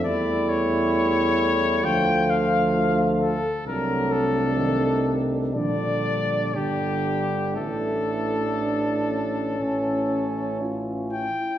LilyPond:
<<
  \new Staff \with { instrumentName = "Cornet" } { \time 4/4 \key d \minor \tempo 4 = 60 d''8 cis''4. g''8 f''4 a'8 | bes'8 a'4 r8 d''4 g'4 | a'2. r8 g''8 | }
  \new Staff \with { instrumentName = "Flugelhorn" } { \time 4/4 \key d \minor e'2 f'2 | d'2 d'4 d'4 | d'2 cis'4. r8 | }
  \new Staff \with { instrumentName = "Euphonium" } { \time 4/4 \key d \minor a2 a2 | a2 g4 g4 | a4 d'8 cis'4. f'8 e'8 | }
  \new Staff \with { instrumentName = "Trombone" } { \clef bass \time 4/4 \key d \minor g2 f2 | fis4 ees4 d4 d4 | e2 e4. r8 | }
  \new Staff \with { instrumentName = "Tuba" } { \clef bass \time 4/4 \key d \minor e,2 d,2 | c,2 bes,,4 g,,4 | a,,2 a,,4. r8 | }
>>